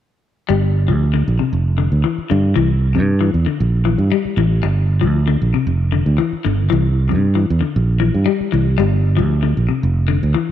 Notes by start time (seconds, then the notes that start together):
0.49 G1 G3
0.88 D2 F3
1.14 D3
1.28 A#1
1.39 C3
1.53 F1
1.78 D3
1.92 D2
2.04 E3
2.18 muted fingered electric bass stroke
2.30 G2 D3
2.56 C2 E3
2.95 G2 C3
3.21 E3
3.34 E2
3.46 D3
3.60 A#1
3.85 E3
3.98 G2
4.12 G3
4.25 muted fingered electric bass stroke
4.37 A1 E3
4.63 G1, muted clean electric guitar stroke
5.01 D2 F3
5.28 D3
5.42 A#1
5.54 C3
5.67 F1
5.92 D3
6.06 D2
6.18 E3
6.33 muted fingered electric bass stroke
6.45 G1 D3
6.70 C2 E3
7.09 G2 C3
7.35 E3
7.50 E2
7.61 D3
7.76 A#1
8.00 E3
8.14 G2
8.26 G3
8.40 muted fingered electric bass stroke
8.52 C2 E3
8.78 G1 G3
9.17 D2 F3
9.43 D3
9.57 A#1
9.69 C3
9.83 F1
10.08 D3
10.23 D2
10.34 E3